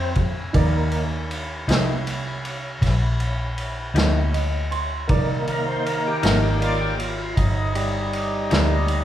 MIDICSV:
0, 0, Header, 1, 6, 480
1, 0, Start_track
1, 0, Key_signature, -3, "minor"
1, 0, Tempo, 758725
1, 343, Time_signature, 12, 3, 24, 8
1, 5720, End_track
2, 0, Start_track
2, 0, Title_t, "Upright piano"
2, 0, Program_c, 0, 0
2, 0, Note_on_c, 0, 63, 60
2, 0, Note_on_c, 0, 70, 55
2, 0, Note_on_c, 0, 74, 63
2, 313, Note_off_c, 0, 63, 0
2, 315, Note_off_c, 0, 70, 0
2, 318, Note_off_c, 0, 74, 0
2, 333, Note_on_c, 0, 63, 61
2, 341, Note_on_c, 0, 70, 51
2, 344, Note_on_c, 0, 74, 59
2, 2742, Note_on_c, 0, 75, 54
2, 2966, Note_off_c, 0, 75, 0
2, 2982, Note_on_c, 0, 84, 51
2, 3193, Note_off_c, 0, 63, 0
2, 3197, Note_off_c, 0, 70, 0
2, 3199, Note_off_c, 0, 74, 0
2, 3206, Note_off_c, 0, 84, 0
2, 3219, Note_on_c, 0, 63, 61
2, 3223, Note_on_c, 0, 70, 62
2, 3229, Note_on_c, 0, 74, 68
2, 5720, Note_off_c, 0, 63, 0
2, 5720, Note_off_c, 0, 70, 0
2, 5720, Note_off_c, 0, 74, 0
2, 5720, End_track
3, 0, Start_track
3, 0, Title_t, "Tonewheel organ"
3, 0, Program_c, 1, 16
3, 0, Note_on_c, 1, 60, 85
3, 91, Note_off_c, 1, 60, 0
3, 338, Note_on_c, 1, 51, 49
3, 346, Note_on_c, 1, 58, 48
3, 659, Note_off_c, 1, 51, 0
3, 664, Note_off_c, 1, 58, 0
3, 3211, Note_on_c, 1, 51, 54
3, 3211, Note_on_c, 1, 58, 46
3, 3469, Note_on_c, 1, 70, 90
3, 3578, Note_off_c, 1, 70, 0
3, 3583, Note_on_c, 1, 72, 78
3, 3695, Note_off_c, 1, 72, 0
3, 3711, Note_on_c, 1, 70, 85
3, 3819, Note_off_c, 1, 70, 0
3, 3841, Note_on_c, 1, 67, 96
3, 3938, Note_on_c, 1, 70, 91
3, 3945, Note_off_c, 1, 67, 0
3, 4052, Note_off_c, 1, 70, 0
3, 4060, Note_on_c, 1, 67, 69
3, 4161, Note_off_c, 1, 51, 0
3, 4167, Note_off_c, 1, 58, 0
3, 4168, Note_on_c, 1, 51, 49
3, 4174, Note_off_c, 1, 67, 0
3, 4175, Note_on_c, 1, 58, 43
3, 4179, Note_on_c, 1, 74, 55
3, 4188, Note_on_c, 1, 65, 88
3, 4297, Note_off_c, 1, 65, 0
3, 4305, Note_on_c, 1, 67, 79
3, 4391, Note_off_c, 1, 51, 0
3, 4395, Note_off_c, 1, 58, 0
3, 4397, Note_off_c, 1, 74, 0
3, 4416, Note_off_c, 1, 67, 0
3, 4428, Note_on_c, 1, 65, 84
3, 4533, Note_off_c, 1, 65, 0
3, 4540, Note_on_c, 1, 65, 83
3, 4653, Note_on_c, 1, 63, 83
3, 4654, Note_off_c, 1, 65, 0
3, 4892, Note_off_c, 1, 63, 0
3, 4904, Note_on_c, 1, 63, 79
3, 4906, Note_on_c, 1, 55, 83
3, 5720, Note_off_c, 1, 55, 0
3, 5720, Note_off_c, 1, 63, 0
3, 5720, End_track
4, 0, Start_track
4, 0, Title_t, "Clean electric guitar"
4, 0, Program_c, 2, 27
4, 1064, Note_on_c, 2, 63, 70
4, 1073, Note_on_c, 2, 58, 66
4, 1075, Note_on_c, 2, 55, 65
4, 1079, Note_on_c, 2, 48, 66
4, 1208, Note_off_c, 2, 63, 0
4, 1212, Note_off_c, 2, 58, 0
4, 1213, Note_off_c, 2, 55, 0
4, 1215, Note_off_c, 2, 48, 0
4, 2498, Note_on_c, 2, 63, 73
4, 2502, Note_on_c, 2, 58, 60
4, 2505, Note_on_c, 2, 55, 56
4, 2508, Note_on_c, 2, 48, 61
4, 2645, Note_off_c, 2, 63, 0
4, 2647, Note_off_c, 2, 58, 0
4, 2648, Note_off_c, 2, 55, 0
4, 2649, Note_off_c, 2, 48, 0
4, 3940, Note_on_c, 2, 63, 69
4, 3949, Note_on_c, 2, 58, 60
4, 3950, Note_on_c, 2, 55, 60
4, 3953, Note_on_c, 2, 48, 49
4, 4086, Note_off_c, 2, 63, 0
4, 4090, Note_off_c, 2, 58, 0
4, 4091, Note_off_c, 2, 55, 0
4, 4092, Note_off_c, 2, 48, 0
4, 5380, Note_on_c, 2, 63, 60
4, 5387, Note_on_c, 2, 58, 59
4, 5390, Note_on_c, 2, 48, 52
4, 5390, Note_on_c, 2, 55, 55
4, 5527, Note_off_c, 2, 63, 0
4, 5530, Note_off_c, 2, 58, 0
4, 5531, Note_off_c, 2, 48, 0
4, 5531, Note_off_c, 2, 55, 0
4, 5720, End_track
5, 0, Start_track
5, 0, Title_t, "Fingered electric bass"
5, 0, Program_c, 3, 33
5, 0, Note_on_c, 3, 41, 88
5, 323, Note_off_c, 3, 41, 0
5, 340, Note_on_c, 3, 39, 63
5, 1040, Note_off_c, 3, 39, 0
5, 1060, Note_on_c, 3, 36, 81
5, 1760, Note_off_c, 3, 36, 0
5, 1779, Note_on_c, 3, 34, 71
5, 2480, Note_off_c, 3, 34, 0
5, 2492, Note_on_c, 3, 38, 84
5, 3196, Note_off_c, 3, 38, 0
5, 3223, Note_on_c, 3, 36, 73
5, 3922, Note_off_c, 3, 36, 0
5, 3943, Note_on_c, 3, 32, 82
5, 4642, Note_off_c, 3, 32, 0
5, 4664, Note_on_c, 3, 31, 82
5, 5363, Note_off_c, 3, 31, 0
5, 5389, Note_on_c, 3, 38, 77
5, 5720, Note_off_c, 3, 38, 0
5, 5720, End_track
6, 0, Start_track
6, 0, Title_t, "Drums"
6, 98, Note_on_c, 9, 51, 46
6, 103, Note_on_c, 9, 36, 69
6, 161, Note_off_c, 9, 51, 0
6, 166, Note_off_c, 9, 36, 0
6, 342, Note_on_c, 9, 51, 76
6, 343, Note_on_c, 9, 36, 93
6, 406, Note_off_c, 9, 36, 0
6, 406, Note_off_c, 9, 51, 0
6, 579, Note_on_c, 9, 51, 52
6, 642, Note_off_c, 9, 51, 0
6, 827, Note_on_c, 9, 51, 58
6, 890, Note_off_c, 9, 51, 0
6, 1067, Note_on_c, 9, 51, 73
6, 1078, Note_on_c, 9, 38, 106
6, 1130, Note_off_c, 9, 51, 0
6, 1142, Note_off_c, 9, 38, 0
6, 1309, Note_on_c, 9, 51, 61
6, 1372, Note_off_c, 9, 51, 0
6, 1548, Note_on_c, 9, 51, 55
6, 1612, Note_off_c, 9, 51, 0
6, 1785, Note_on_c, 9, 36, 71
6, 1786, Note_on_c, 9, 51, 69
6, 1798, Note_on_c, 9, 38, 30
6, 1848, Note_off_c, 9, 36, 0
6, 1850, Note_off_c, 9, 51, 0
6, 1861, Note_off_c, 9, 38, 0
6, 2024, Note_on_c, 9, 51, 55
6, 2087, Note_off_c, 9, 51, 0
6, 2263, Note_on_c, 9, 51, 52
6, 2326, Note_off_c, 9, 51, 0
6, 2503, Note_on_c, 9, 51, 75
6, 2515, Note_on_c, 9, 38, 98
6, 2567, Note_off_c, 9, 51, 0
6, 2578, Note_off_c, 9, 38, 0
6, 2747, Note_on_c, 9, 51, 52
6, 2810, Note_off_c, 9, 51, 0
6, 2985, Note_on_c, 9, 51, 46
6, 3048, Note_off_c, 9, 51, 0
6, 3220, Note_on_c, 9, 51, 67
6, 3223, Note_on_c, 9, 36, 100
6, 3283, Note_off_c, 9, 51, 0
6, 3286, Note_off_c, 9, 36, 0
6, 3464, Note_on_c, 9, 51, 56
6, 3527, Note_off_c, 9, 51, 0
6, 3709, Note_on_c, 9, 51, 60
6, 3773, Note_off_c, 9, 51, 0
6, 3942, Note_on_c, 9, 51, 80
6, 3953, Note_on_c, 9, 38, 105
6, 4005, Note_off_c, 9, 51, 0
6, 4017, Note_off_c, 9, 38, 0
6, 4187, Note_on_c, 9, 51, 59
6, 4250, Note_off_c, 9, 51, 0
6, 4426, Note_on_c, 9, 51, 61
6, 4489, Note_off_c, 9, 51, 0
6, 4664, Note_on_c, 9, 36, 66
6, 4664, Note_on_c, 9, 51, 72
6, 4727, Note_off_c, 9, 36, 0
6, 4727, Note_off_c, 9, 51, 0
6, 4904, Note_on_c, 9, 51, 63
6, 4967, Note_off_c, 9, 51, 0
6, 5145, Note_on_c, 9, 51, 55
6, 5208, Note_off_c, 9, 51, 0
6, 5383, Note_on_c, 9, 51, 74
6, 5395, Note_on_c, 9, 38, 93
6, 5446, Note_off_c, 9, 51, 0
6, 5458, Note_off_c, 9, 38, 0
6, 5619, Note_on_c, 9, 51, 62
6, 5682, Note_off_c, 9, 51, 0
6, 5720, End_track
0, 0, End_of_file